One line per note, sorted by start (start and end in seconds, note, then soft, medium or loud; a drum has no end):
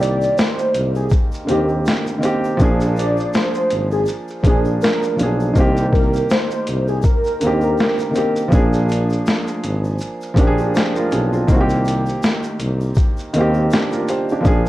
0.00 0.34 C2 loud
0.00 0.98 D#3 medium
0.00 0.99 A#3 medium
0.00 1.00 C4 medium
0.00 1.02 G4 loud
0.00 0.40 D5 medium
0.00 closed hi-hat medium
0.00 shaker soft
0.03 shaker soft
0.21 shaker medium
0.23 shaker soft
0.37 0.92 C5 medium
0.37 snare loud
0.37 shaker medium
0.58 shaker soft
0.74 1.10 C2 loud
0.74 closed hi-hat medium
0.74 shaker soft
0.95 1.10 G#4 medium
0.95 shaker medium
1.10 kick medium
1.10 shaker medium
1.12 shaker medium
1.32 shaker soft
1.34 shaker soft
1.45 1.54 D3 medium
1.45 2.16 A#3 medium
1.45 1.67 G4 medium
1.45 closed hi-hat medium
1.45 shaker medium
1.49 1.84 D#2 medium
1.49 2.17 D#3 medium
1.49 2.17 C4 medium
1.49 2.18 G4 medium
1.69 shaker soft
1.86 shaker medium
1.87 snare loud
1.87 shaker medium
2.06 shaker soft
2.18 2.55 D#3 medium
2.18 2.56 A#3 medium
2.18 shaker soft
2.23 2.57 C4 medium
2.23 2.58 G4 medium
2.23 closed hi-hat medium
2.23 shaker soft
2.44 shaker medium
2.57 3.30 A#1 loud
2.57 3.95 F3 medium
2.57 3.96 A#3 medium
2.57 kick medium
2.57 shaker medium
2.62 3.97 D4 medium
2.62 3.98 G#4 loud
2.80 shaker medium
2.80 shaker soft
2.96 3.30 D5 medium
2.96 closed hi-hat medium
2.96 shaker soft
2.99 shaker soft
3.17 shaker medium
3.20 shaker soft
3.33 3.89 C5 medium
3.33 snare loud
3.33 shaker medium
3.54 shaker soft
3.71 4.06 G#1 medium
3.71 closed hi-hat medium
3.71 shaker soft
3.91 4.06 G#4 medium
3.91 shaker soft
4.06 shaker medium
4.08 shaker medium
4.28 shaker soft
4.30 shaker soft
4.43 4.80 A#1 medium
4.43 5.12 F3 medium
4.43 5.13 A#3 medium
4.43 4.64 G#4 medium
4.43 kick medium
4.43 closed hi-hat medium
4.43 shaker soft
4.47 5.14 D4 medium
4.47 5.15 G#4 medium
4.65 shaker soft
4.81 5.16 A#4 medium
4.81 shaker medium
4.83 snare loud
4.83 shaker medium
5.02 shaker soft
5.04 shaker soft
5.16 5.54 B1 medium
5.16 5.52 F3 medium
5.16 5.53 A#3 medium
5.16 closed hi-hat medium
5.16 shaker soft
5.20 5.54 D4 medium
5.20 5.55 G#4 medium
5.40 shaker soft
5.54 6.26 C2 loud
5.54 6.91 D#3 medium
5.54 6.93 A#3 medium
5.54 kick medium
5.54 shaker medium
5.58 6.94 C4 medium
5.58 6.95 G4 loud
5.77 shaker medium
5.77 shaker soft
5.93 6.27 A#4 medium
5.93 kick medium
5.93 closed hi-hat medium
5.93 shaker medium
5.95 shaker soft
6.14 shaker medium
6.16 shaker soft
6.30 6.85 C5 medium
6.30 snare loud
6.30 shaker medium
6.50 shaker soft
6.67 7.03 C2 medium
6.67 closed hi-hat medium
6.67 shaker soft
6.88 7.03 G#4 medium
6.88 shaker soft
7.02 kick medium
7.02 shaker medium
7.04 7.59 A#4 medium
7.04 shaker medium
7.24 shaker soft
7.26 shaker soft
7.40 7.77 D#2 medium
7.40 7.48 D3 medium
7.40 8.10 A#3 medium
7.40 closed hi-hat medium
7.40 shaker soft
7.40 shaker medium
7.45 8.09 D#3 medium
7.45 8.11 C4 medium
7.45 8.12 G4 medium
7.61 8.48 A#4 medium
7.61 shaker soft
7.77 shaker medium
7.80 snare loud
7.80 shaker medium
7.98 shaker medium
7.98 shaker soft
8.11 8.47 D#3 medium
8.11 8.48 A#3 medium
8.11 shaker soft
8.15 8.49 C4 medium
8.15 8.50 G4 medium
8.15 closed hi-hat medium
8.15 shaker soft
8.36 shaker soft
8.48 9.87 F3 medium
8.48 9.88 A#3 medium
8.48 kick medium
8.48 shaker medium
8.53 9.23 A#1 loud
8.53 9.89 D4 medium
8.53 9.90 G#4 loud
8.73 shaker medium
8.73 shaker soft
8.89 closed hi-hat medium
8.89 shaker medium
8.92 shaker soft
9.10 shaker medium
9.12 shaker soft
9.26 snare loud
9.26 shaker medium
9.47 shaker soft
9.63 9.99 G#1 loud
9.63 closed hi-hat medium
9.63 shaker soft
9.84 shaker soft
9.99 shaker medium
10.01 shaker medium
10.21 shaker soft
10.23 shaker soft
10.34 10.72 A#1 medium
10.34 11.04 F3 medium
10.34 11.05 A#3 medium
10.34 kick medium
10.34 closed hi-hat medium
10.34 shaker soft
10.38 10.75 D4 medium
10.38 10.46 G4 medium
10.47 10.79 G#4 loud
10.58 shaker soft
10.75 10.95 G4 medium
10.75 10.95 C5 medium
10.75 shaker medium
10.76 snare loud
10.76 shaker medium
10.95 11.11 F4 medium
10.95 11.11 A#4 medium
10.95 shaker soft
11.11 11.47 B1 loud
11.11 11.32 D4 medium
11.11 11.31 G#4 medium
11.11 closed hi-hat medium
11.11 shaker soft
11.33 11.50 C4 soft
11.33 11.68 F4 medium
11.33 shaker soft
11.47 12.19 C2 loud
11.47 12.85 D#3 medium
11.47 12.86 A#3 medium
11.47 kick medium
11.47 shaker medium
11.52 12.87 C4 medium
11.52 11.59 F#4 medium
11.61 12.91 G4 loud
11.69 shaker medium
11.69 shaker soft
11.85 closed hi-hat medium
11.85 shaker medium
11.88 shaker soft
12.06 shaker medium
12.09 shaker soft
12.22 snare loud
12.22 shaker medium
12.43 shaker soft
12.60 12.95 C2 loud
12.60 closed hi-hat medium
12.60 shaker soft
12.81 shaker medium
12.95 kick medium
12.95 shaker medium
12.97 shaker medium
13.17 shaker soft
13.19 shaker soft
13.34 13.69 D#2 medium
13.34 14.02 D#3 medium
13.34 14.03 A#3 medium
13.34 closed hi-hat medium
13.34 shaker soft
13.38 14.04 C4 medium
13.38 13.72 G4 medium
13.54 shaker soft
13.70 shaker medium
13.73 13.92 D4 medium
13.73 13.92 G4 medium
13.73 snare loud
13.73 shaker medium
13.91 14.07 A#4 medium
13.91 shaker soft
13.93 14.07 F4 medium
13.93 shaker medium
14.07 14.29 G4 medium
14.07 14.29 C5 medium
14.07 closed hi-hat medium
14.07 shaker soft
14.29 14.44 D4 medium
14.29 14.66 G4 medium
14.29 shaker medium
14.41 14.69 F3 medium
14.41 14.69 A#3 medium
14.41 shaker medium
14.45 14.69 A#1 loud
14.45 14.69 D4 medium
14.45 14.69 G#4 loud
14.45 kick medium
14.45 shaker medium
14.66 shaker medium